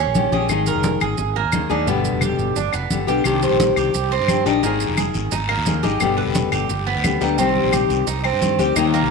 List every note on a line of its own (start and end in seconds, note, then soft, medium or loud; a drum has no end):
0.00 0.32 C#4 medium
0.06 0.31 A#1 medium
0.15 0.32 D#3 soft
0.15 0.32 G3 soft
0.15 0.32 C#4 medium
0.15 0.31 G4 soft
0.15 high conga medium
0.15 maracas medium
0.32 0.49 A#1 medium
0.32 0.50 G3 medium
0.32 0.49 C#4 medium
0.32 0.49 G4 medium
0.32 0.66 G#4 medium
0.32 high conga medium
0.32 maracas soft
0.49 0.74 G#1 medium
0.49 1.17 D#3 medium
0.49 1.17 G#3 medium
0.49 1.18 D#4 medium
0.49 1.18 G#4 medium
0.49 high conga soft
0.49 claves medium
0.49 maracas medium
0.66 1.00 A#4 medium
0.66 high conga soft
0.66 maracas medium
0.75 1.00 F1 medium
0.83 high conga medium
0.83 maracas medium
1.01 1.18 G#1 medium
1.01 1.35 G#4 medium
1.01 high conga soft
1.01 claves medium
1.01 maracas soft
1.18 1.43 G#1 medium
1.18 muted nylon-string guitar stroke medium
1.18 high conga soft
1.18 maracas medium
1.36 1.69 A#3 medium
1.36 high conga soft
1.44 1.69 D#2 medium
1.52 1.69 D#3 soft
1.52 1.70 G#3 soft
1.52 1.69 D#4 medium
1.52 1.68 G#4 soft
1.52 high conga medium
1.52 claves medium
1.52 maracas medium
1.70 1.86 D#2 medium
1.70 1.87 G#3 medium
1.70 1.87 D4 medium
1.70 1.87 D#4 medium
1.70 1.86 G#4 medium
1.70 high conga soft
1.70 maracas soft
1.86 2.12 G1 medium
1.86 2.55 B2 medium
1.86 2.56 D3 medium
1.86 2.57 G3 medium
1.86 2.21 B3 medium
1.86 2.56 B3 medium
1.86 2.57 G4 medium
1.86 high conga soft
1.86 maracas medium
2.05 high conga soft
2.05 maracas soft
2.13 2.38 F1 medium
2.21 2.55 G4 medium
2.21 high conga medium
2.21 claves medium
2.21 maracas medium
2.39 2.55 G1 medium
2.39 high conga soft
2.39 maracas soft
2.56 2.72 G1 medium
2.56 2.73 D4 medium
2.56 muted nylon-string guitar stroke medium
2.56 high conga soft
2.56 maracas medium
2.73 2.89 F1 medium
2.73 3.07 B3 medium
2.73 high conga soft
2.73 claves medium
2.73 maracas medium
2.90 3.06 G1 medium
2.90 3.07 D3 soft
2.90 3.07 G3 soft
2.90 3.07 B3 soft
2.90 3.06 G4 soft
2.90 high conga medium
2.90 maracas medium
3.07 3.23 B1 medium
3.07 3.24 D3 soft
3.07 3.24 G3 medium
3.07 3.24 B3 medium
3.07 3.24 G4 medium
3.07 3.42 G4 medium
3.07 maracas soft
3.24 3.50 C2 medium
3.24 3.93 C3 medium
3.24 3.93 D#3 medium
3.24 3.93 G3 medium
3.24 3.94 D4 medium
3.24 3.94 G4 medium
3.24 high conga soft
3.24 long guiro medium
3.24 claves medium
3.24 maracas medium
3.42 3.76 C5 medium
3.42 high conga soft
3.42 maracas medium
3.51 3.75 A#1 medium
3.60 high conga medium
3.60 short guiro medium
3.60 maracas medium
3.76 3.93 C2 medium
3.76 4.10 G4 medium
3.76 high conga soft
3.76 short guiro medium
3.76 claves medium
3.76 maracas soft
3.94 4.19 C2 medium
3.94 muted nylon-string guitar stroke medium
3.94 high conga soft
3.94 long guiro medium
3.94 maracas medium
4.11 4.45 C4 medium
4.11 high conga soft
4.20 4.44 G2 medium
4.28 4.45 D#3 soft
4.28 4.45 G3 soft
4.28 4.45 D4 soft
4.28 4.44 G4 medium
4.28 high conga medium
4.28 short guiro medium
4.28 claves medium
4.28 maracas medium
4.46 4.62 A#1 medium
4.46 4.61 D#3 medium
4.46 4.63 G3 medium
4.46 4.62 D4 medium
4.46 4.63 D#4 medium
4.46 4.62 G4 medium
4.46 high conga soft
4.46 short guiro medium
4.46 maracas soft
4.62 4.88 G#1 medium
4.62 5.31 D#3 medium
4.62 5.32 G#3 medium
4.62 4.96 A#3 medium
4.62 5.31 D#4 medium
4.62 5.32 G#4 medium
4.62 high conga soft
4.62 long guiro medium
4.62 maracas medium
4.80 high conga soft
4.80 maracas medium
4.89 5.13 F1 medium
4.97 5.31 G#4 medium
4.97 high conga medium
4.97 short guiro medium
4.97 claves medium
4.97 maracas medium
5.14 5.31 G#1 medium
5.14 high conga soft
5.14 short guiro medium
5.14 maracas soft
5.31 5.56 G#1 medium
5.31 5.49 D#4 medium
5.31 muted nylon-string guitar stroke medium
5.31 high conga soft
5.31 long guiro medium
5.31 maracas medium
5.49 5.82 A#3 medium
5.49 high conga soft
5.49 claves medium
5.58 5.82 D#2 medium
5.66 5.82 D#3 soft
5.66 5.83 G#3 soft
5.66 5.83 D#4 soft
5.66 5.82 G#4 soft
5.66 high conga medium
5.66 short guiro medium
5.66 maracas medium
5.83 6.00 G#1 medium
5.83 6.01 G#3 medium
5.83 6.00 D#4 medium
5.83 6.17 G4 medium
5.83 6.00 G#4 medium
5.83 high conga medium
5.83 short guiro medium
5.83 maracas soft
6.00 6.25 G1 medium
6.00 6.68 B2 medium
6.00 6.69 D3 medium
6.00 6.70 G3 medium
6.00 6.69 B3 medium
6.00 6.70 G4 medium
6.00 high conga soft
6.00 long guiro medium
6.00 claves medium
6.00 maracas medium
6.18 6.51 B4 medium
6.18 high conga soft
6.26 6.51 F1 medium
6.35 high conga medium
6.35 short guiro medium
6.35 maracas medium
6.52 6.69 G1 medium
6.52 6.86 G4 medium
6.52 high conga soft
6.52 short guiro medium
6.52 claves medium
6.52 maracas soft
6.69 6.94 G1 medium
6.69 muted nylon-string guitar stroke medium
6.69 high conga soft
6.69 long guiro medium
6.69 maracas medium
6.87 7.20 B3 medium
6.87 high conga soft
6.96 7.20 D2 medium
7.04 7.20 D3 soft
7.04 7.21 G3 soft
7.04 7.21 B3 soft
7.04 7.20 G4 soft
7.04 high conga medium
7.04 short guiro medium
7.04 claves medium
7.04 maracas medium
7.21 7.37 D2 medium
7.21 7.39 D3 medium
7.21 7.38 G3 medium
7.21 7.38 B3 medium
7.21 7.38 D#4 medium
7.21 7.38 G4 medium
7.21 high conga soft
7.21 short guiro medium
7.21 maracas soft
7.38 7.63 C2 medium
7.38 8.06 C3 medium
7.38 8.06 D#3 medium
7.38 8.07 G3 medium
7.38 7.72 C4 medium
7.38 8.07 C4 medium
7.38 8.07 G4 medium
7.38 high conga soft
7.38 long guiro medium
7.38 maracas medium
7.56 high conga soft
7.64 7.89 A#1 medium
7.73 8.06 G4 medium
7.73 high conga medium
7.73 short guiro medium
7.73 claves medium
7.73 maracas medium
7.90 8.06 C2 medium
7.90 high conga soft
7.90 short guiro medium
7.90 maracas soft
8.07 8.32 C2 medium
8.07 8.24 D#4 medium
8.07 muted nylon-string guitar stroke medium
8.07 high conga soft
8.07 long guiro medium
8.07 maracas medium
8.24 8.58 C4 medium
8.24 high conga soft
8.24 claves medium
8.33 8.57 G2 medium
8.41 8.58 D#3 soft
8.41 8.59 G3 soft
8.41 8.59 C4 soft
8.41 8.58 G4 soft
8.41 high conga medium
8.41 short guiro medium
8.41 maracas medium
8.59 8.75 D2 medium
8.59 8.75 D#3 soft
8.59 8.75 G3 medium
8.59 8.76 C4 medium
8.59 8.76 G4 medium
8.59 high conga medium
8.59 short guiro medium
8.59 maracas soft
8.76 9.01 D#2 medium
8.76 9.11 D#3 medium
8.76 9.11 G3 medium
8.76 9.11 A#3 medium
8.76 8.93 D#4 medium
8.76 9.11 D#4 medium
8.76 9.11 G4 medium
8.76 high conga soft
8.76 long guiro medium
8.76 claves medium
8.76 maracas medium
8.94 9.11 A#3 medium
8.94 high conga soft
8.94 maracas soft
9.02 9.11 C2 medium